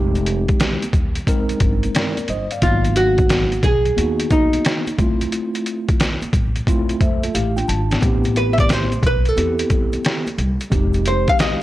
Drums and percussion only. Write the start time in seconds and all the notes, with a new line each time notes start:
0.15 closed hi-hat, shaker
0.26 closed hi-hat, shaker
0.48 kick, closed hi-hat, shaker
0.60 snare, closed hi-hat, shaker
0.82 closed hi-hat, high conga, shaker
0.93 kick, closed hi-hat, low conga, shaker
1.15 closed hi-hat, shaker
1.27 kick, closed hi-hat, high conga, shaker
1.49 closed hi-hat, shaker
1.60 kick, closed hi-hat, low conga, shaker
1.83 closed hi-hat, high conga, shaker
1.95 snare, closed hi-hat, shaker
2.17 closed hi-hat, high conga, shaker
2.28 closed hi-hat, high conga, low conga, shaker
2.51 closed hi-hat, shaker
2.62 kick, closed hi-hat, shaker
2.85 closed hi-hat, shaker
2.96 closed hi-hat, shaker
3.18 kick, closed hi-hat, shaker
3.29 snare, closed hi-hat, shaker
3.52 closed hi-hat, high conga, shaker
3.63 kick, closed hi-hat, low conga, shaker
3.85 closed hi-hat, shaker
3.98 closed hi-hat, high conga, shaker
4.20 closed hi-hat, shaker
4.30 kick, closed hi-hat, low conga, shaker
4.53 closed hi-hat, high conga, shaker
4.65 snare, closed hi-hat, shaker
4.87 closed hi-hat, high conga, shaker
4.99 kick, closed hi-hat, high conga, low conga, shaker
5.21 closed hi-hat, shaker
5.32 closed hi-hat, shaker
5.55 closed hi-hat, shaker
5.66 closed hi-hat, shaker
5.89 kick, closed hi-hat, shaker
6.00 snare, closed hi-hat, shaker
6.22 closed hi-hat, high conga, shaker
6.33 kick, closed hi-hat, low conga, shaker
6.56 closed hi-hat, shaker
6.67 kick, closed hi-hat, high conga, shaker
6.89 closed hi-hat, shaker
7.01 kick, closed hi-hat, low conga, shaker
7.23 closed hi-hat, high conga, shaker
7.35 closed hi-hat, shaker
7.57 closed hi-hat, high conga, shaker
7.68 closed hi-hat, high conga, low conga, shaker
7.91 snare, closed hi-hat, shaker
8.02 kick, closed hi-hat, shaker
8.24 closed hi-hat, shaker
8.36 closed hi-hat, shaker
8.58 kick, closed hi-hat, shaker
8.69 snare, closed hi-hat, shaker
8.92 closed hi-hat, high conga, shaker
9.03 kick, closed hi-hat, low conga, shaker
9.25 closed hi-hat, shaker
9.37 closed hi-hat, high conga, shaker
9.59 closed hi-hat, shaker
9.70 kick, closed hi-hat, low conga, shaker
9.93 closed hi-hat, high conga, shaker
10.04 snare, closed hi-hat, shaker
10.27 closed hi-hat, high conga, shaker
10.38 closed hi-hat, high conga, low conga, shaker
10.60 closed hi-hat, shaker
10.72 kick, closed hi-hat, shaker
10.93 closed hi-hat, shaker
11.05 closed hi-hat, shaker
11.28 kick, closed hi-hat, shaker
11.39 snare, closed hi-hat, shaker